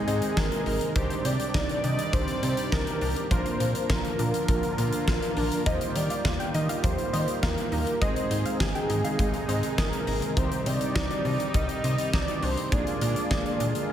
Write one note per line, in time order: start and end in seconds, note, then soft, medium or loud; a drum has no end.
0.00 0.93 C3 medium
0.00 3.27 D#3 medium
0.00 0.92 G#3 medium
0.00 0.93 G#3 medium
0.00 0.92 C4 medium
0.00 0.92 D#4 medium
0.00 0.93 D#4 medium
0.00 0.38 G#4 loud
0.00 0.92 G#4 medium
0.07 0.21 G#2 medium
0.07 0.33 C4 medium
0.07 0.32 D#5 medium
0.07 closed hi-hat medium
0.22 closed hi-hat medium
0.37 0.50 G#1 loud
0.37 0.62 G#4 medium
0.37 0.97 A#4 loud
0.37 kick loud
0.37 snare loud
0.52 closed hi-hat medium
0.66 0.80 G#1 loud
0.66 0.92 D#4 medium
0.66 open hi-hat medium
0.81 closed hi-hat medium
0.96 1.09 C2 loud
0.96 3.29 C3 medium
0.96 1.21 D#3 loud
0.96 3.29 G3 medium
0.96 3.27 C4 medium
0.96 3.27 D4 medium
0.96 3.27 D#4 medium
0.96 3.27 G4 medium
0.96 1.27 C5 loud
0.96 3.29 D5 medium
0.96 kick loud
0.96 closed hi-hat medium
1.10 closed hi-hat medium
1.25 1.38 C3 loud
1.25 1.50 C4 medium
1.25 1.86 D5 loud
1.25 closed hi-hat medium
1.40 closed hi-hat medium
1.54 1.68 C2 loud
1.54 1.80 D#4 loud
1.54 kick loud
1.54 snare loud
1.69 closed hi-hat soft
1.84 1.97 C3 loud
1.84 2.09 D4 medium
1.84 2.13 D#5 loud
1.84 closed hi-hat medium
1.99 closed hi-hat medium
2.13 2.27 C2 loud
2.13 2.39 D#3 medium
2.13 2.68 C5 loud
2.13 kick loud
2.13 closed hi-hat medium
2.28 closed hi-hat soft
2.43 2.56 C3 loud
2.43 2.68 C4 medium
2.43 closed hi-hat medium
2.57 closed hi-hat medium
2.72 2.86 C2 loud
2.72 2.97 D#4 loud
2.72 3.27 A#4 loud
2.72 kick loud
2.72 snare loud
2.87 closed hi-hat medium
3.01 3.15 C2 medium
3.01 3.27 D4 medium
3.01 open hi-hat medium
3.16 closed hi-hat medium
3.31 3.44 A#1 loud
3.31 5.64 D3 medium
3.31 3.56 F3 loud
3.31 5.64 F3 medium
3.31 5.62 A#3 medium
3.31 7.98 A#3 medium
3.31 5.62 D4 medium
3.31 7.98 F4 medium
3.31 5.62 F4 medium
3.31 5.62 A#4 medium
3.31 3.86 C5 loud
3.31 kick loud
3.31 closed hi-hat medium
3.46 closed hi-hat medium
3.60 3.74 A#2 loud
3.60 3.86 A#3 medium
3.60 closed hi-hat medium
3.75 closed hi-hat medium
3.90 4.03 A#1 loud
3.90 4.15 F4 loud
3.90 5.04 A#4 loud
3.90 kick loud
3.90 snare loud
4.05 closed hi-hat soft
4.19 4.32 A#2 loud
4.19 4.45 D4 medium
4.19 closed hi-hat medium
4.34 closed hi-hat medium
4.48 4.62 A#1 loud
4.48 4.74 F3 medium
4.48 kick loud
4.48 closed hi-hat medium
4.63 closed hi-hat medium
4.78 4.91 A#2 loud
4.78 5.03 A#3 medium
4.78 closed hi-hat medium
4.93 closed hi-hat medium
5.07 5.21 A#1 loud
5.07 5.33 F4 medium
5.07 5.68 A#4 loud
5.07 kick loud
5.07 snare loud
5.22 closed hi-hat medium
5.37 5.50 A#1 loud
5.37 5.62 D4 medium
5.37 open hi-hat medium
5.52 closed hi-hat medium
5.66 5.80 D#2 loud
5.66 12.68 D#3 medium
5.66 5.92 F3 medium
5.66 7.99 G3 medium
5.66 7.98 A#3 medium
5.66 7.98 D#4 medium
5.66 7.98 F4 medium
5.66 7.98 G4 medium
5.66 5.97 C5 loud
5.66 5.91 D#5 loud
5.66 kick loud
5.66 closed hi-hat medium
5.81 closed hi-hat medium
5.96 6.09 D#3 loud
5.96 6.21 G3 medium
5.96 6.54 D5 loud
5.96 closed hi-hat medium
6.10 6.23 F5 medium
6.10 closed hi-hat medium
6.25 6.38 D#2 loud
6.25 6.50 F4 medium
6.25 kick loud
6.25 snare loud
6.40 6.52 G5 medium
6.40 closed hi-hat medium
6.54 6.68 D#3 loud
6.54 6.80 D#4 medium
6.54 6.68 D#5 loud
6.54 closed hi-hat medium
6.69 6.81 F5 medium
6.69 closed hi-hat medium
6.84 6.97 D#2 loud
6.84 7.09 F3 medium
6.84 7.39 C5 loud
6.84 kick loud
6.84 closed hi-hat medium
6.98 closed hi-hat soft
7.13 7.27 D#3 loud
7.13 7.39 G3 medium
7.13 7.38 D#5 medium
7.13 closed hi-hat medium
7.28 closed hi-hat medium
7.43 7.56 D#2 loud
7.43 7.68 F4 loud
7.43 8.03 A#4 medium
7.43 7.84 F5 medium
7.43 kick loud
7.43 snare loud
7.58 closed hi-hat medium
7.72 7.85 D#2 medium
7.72 7.97 D#4 medium
7.72 open hi-hat medium
7.87 closed hi-hat medium
8.01 8.15 G#1 loud
8.01 12.68 C3 medium
8.01 10.34 G#3 medium
8.01 8.27 G#3 medium
8.01 10.33 G#3 medium
8.01 10.33 C4 medium
8.01 10.34 D#4 medium
8.01 10.33 D#4 medium
8.01 10.33 G#4 medium
8.01 8.60 C5 loud
8.01 8.26 D#5 loud
8.01 kick loud
8.01 closed hi-hat medium
8.16 closed hi-hat medium
8.31 8.44 G#2 loud
8.31 8.56 C4 medium
8.31 closed hi-hat medium
8.46 8.58 F5 medium
8.46 closed hi-hat medium
8.60 8.74 G#1 loud
8.60 8.86 G#4 medium
8.60 9.74 G#4 loud
8.60 kick loud
8.60 snare loud
8.75 8.87 G5 medium
8.75 closed hi-hat medium
8.90 9.03 G#2 loud
8.90 9.15 D#4 medium
8.90 closed hi-hat medium
9.04 9.17 F5 medium
9.04 closed hi-hat medium
9.19 9.32 G#1 loud
9.19 9.45 G#3 medium
9.19 kick loud
9.19 closed hi-hat medium
9.34 closed hi-hat soft
9.48 9.62 G#2 loud
9.48 9.74 C4 medium
9.48 9.73 D#5 medium
9.48 closed hi-hat medium
9.63 closed hi-hat medium
9.78 9.91 G#1 loud
9.78 10.03 G#4 loud
9.78 10.38 A#4 medium
9.78 kick loud
9.78 snare loud
9.93 closed hi-hat medium
10.07 10.21 G#1 loud
10.07 10.33 D#4 medium
10.07 open hi-hat medium
10.22 closed hi-hat medium
10.37 10.50 C2 loud
10.37 10.62 D#3 medium
10.37 12.70 G3 medium
10.37 12.68 C4 medium
10.37 12.70 D#4 medium
10.37 12.68 D#4 medium
10.37 12.68 G4 medium
10.37 10.68 C5 loud
10.37 kick loud
10.37 closed hi-hat medium
10.52 closed hi-hat medium
10.66 10.80 C3 loud
10.66 10.92 C4 medium
10.66 11.56 D5 loud
10.66 closed hi-hat medium
10.81 closed hi-hat medium
10.96 11.09 C2 loud
10.96 11.21 D#4 loud
10.96 kick loud
10.96 snare loud
11.11 closed hi-hat soft
11.25 11.38 C3 loud
11.25 11.50 D4 medium
11.25 open hi-hat soft
11.40 closed hi-hat medium
11.54 11.68 C2 loud
11.54 11.80 D#3 medium
11.54 12.13 D#5 loud
11.54 kick loud
11.54 closed hi-hat medium
11.69 closed hi-hat soft
11.84 11.97 C3 loud
11.84 12.09 C4 medium
11.84 closed hi-hat medium
11.98 closed hi-hat medium
12.13 12.27 C2 loud
12.13 12.39 D#4 loud
12.13 12.44 D5 loud
12.13 kick loud
12.13 snare loud
12.28 closed hi-hat medium
12.43 12.56 C2 loud
12.43 12.68 D4 medium
12.43 12.74 C5 loud
12.43 open hi-hat medium
12.57 closed hi-hat medium
12.72 12.85 A#1 loud
12.72 13.93 D3 medium
12.72 13.93 G#3 medium
12.72 12.97 G#3 loud
12.72 13.93 A#3 medium
12.72 13.93 D4 medium
12.72 13.93 F4 medium
12.72 13.93 G#4 medium
12.72 13.93 D5 loud
12.72 kick loud
12.72 closed hi-hat medium
12.87 closed hi-hat medium
13.01 13.15 A#2 loud
13.01 13.27 A#3 medium
13.01 closed hi-hat medium
13.16 closed hi-hat medium
13.31 13.44 A#1 loud
13.31 13.56 G#4 loud
13.31 kick loud
13.31 snare loud
13.46 closed hi-hat medium
13.60 13.74 A#2 medium
13.60 13.86 D4 medium
13.60 closed hi-hat medium
13.75 closed hi-hat medium